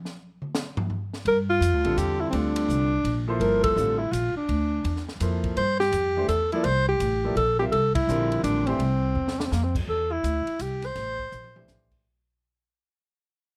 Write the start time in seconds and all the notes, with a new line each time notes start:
0.05 snare
0.42 mid tom
0.54 snare, hi-hat pedal
0.77 floor tom
0.90 floor tom
1.13 snare
1.25 G2 A#4, ride
1.50 F4
1.60 F2, hi-hat pedal, ride
1.73 D2
1.84 A#1 D3 G3 C4 F4 A4, ride
1.97 E2 G4, hi-hat pedal, ride
2.21 E4
2.30 D2 D3 G3 C4 D4 F4 A4, ride
2.56 ride
2.68 C2, hi-hat pedal
3.04 A#1, ride
3.28 F3 A#3 E4 A4 C5
3.40 G1 A#4, ride
3.64 A4, kick, ride
3.76 A1 D3 G3 C4 F4 A4, hi-hat pedal
3.99 E4
4.12 A#1 F4, hi-hat pedal, ride
4.35 D4, muted upright bass stroke
4.48 D2, ride
4.84 E2, ride
4.96 snare
5.09 snare
5.20 F2 F3 A#3 E4 A4 C5, hi-hat pedal, ride
5.44 kick, ride
5.56 G2 C5, ride
5.80 G4, snare
5.92 F2, hi-hat pedal, ride
6.17 E3 A3 D4 G4 C5
6.28 E2 A4, hi-hat pedal, ride
6.52 F3 A#3 E4 A4 D5, ride
6.64 C2 C5, ride
6.88 G4
7.00 A1, hi-hat pedal, ride
7.24 F3 A#3 E4 A4 D5
7.36 A#1 A4, ride
7.59 G3 C4 F4 G4 A#4 E5
7.72 C2 A4, ride
7.95 E4, kick, ride
8.07 A#1 D3 F3 G3 C4 A#4, hi-hat pedal
8.32 ride
8.43 A1 D4, hi-hat pedal, ride
8.67 E3 A3 C4 D4 G4 C5, ride
8.79 C2, ride
9.15 E2
9.28 snare
9.39 D4, snare
9.46 C4
9.52 F2 A#3, snare, hi-hat pedal
9.64 C4
9.75 kick, crash
9.88 E2 A4
10.12 E4
10.24 D2, hi-hat pedal, ride
10.47 muted upright bass stroke, ride
10.59 C2 G4, hi-hat pedal, ride
10.82 C5, snare, ride
10.95 A1, snare, ride
11.19 kick
11.32 A#1, hi-hat pedal, high tom
11.44 high tom
11.56 E3 A3 D4 G4 C5, high tom
11.68 A1, snare, hi-hat pedal
11.91 kick, crash